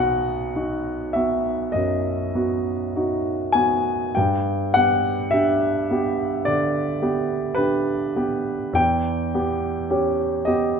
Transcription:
Already playing: B1 B3 F#4 D#5 F#5
0.56 D#4 F#4
1.13 B3 F#4 E5
1.72 F#2 D#5
2.35 B3 F#4
2.96 D#4 F#4
3.52 B3 F#4 G#5
4.15 G2 G5
4.74 B3 G4 F#5
5.31 D4 G4 E5
5.91 B3 G4
6.45 D3 D5
7.02 B3 G4
7.55 D4 G4 B4
8.16 B3 G4
8.73 E2 G5
9.35 B3 G4
9.90 C#4 G4
10.45 B3 G4 D#5

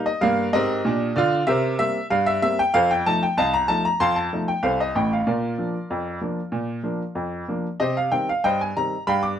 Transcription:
0.06 D#5
0.21 G2 A#3 F5
0.53 G#2 C4 G4 A#4 D#5
0.85 A#2 D4
1.16 D3 F4 D5
1.47 C3 A#4 C5 E5
1.79 G3 A#3 C4 E5
2.10 G2 F5
2.26 E5
2.42 G3 A#3 C4 E5
2.59 G5
2.74 F2 A4 C5 F5
2.91 G5
3.06 F3 A3 D#4 A5
3.23 G5
3.37 C2 D#5 F5 A5
3.54 A#5
3.68 F3 A3 D#4 A5
3.85 A#5
4.00 F2 F5 A5 C6
4.16 A5
4.33 F3 A3 D#4
4.48 G5
4.63 C2 A4 C5 F5
4.80 D#5
4.95 A1 A2 G5
5.13 F5
5.27 A#2 F4 A#4 D5
5.58 F3 A#3 D4
5.90 F2
6.21 F3 A#3 D4
6.52 A#2
6.83 F3 A#3 D4
7.15 F2
7.48 F3 A#3 D4
7.80 C3 G4 C5 D#5
7.97 F5
8.12 D#3 G3 C4 G5
8.29 F5
8.44 G2 C5 D#5 G5
8.61 G#5
8.76 D#3 G3 C4 A#5
9.07 G2 F5 G5 B5
9.23 D6

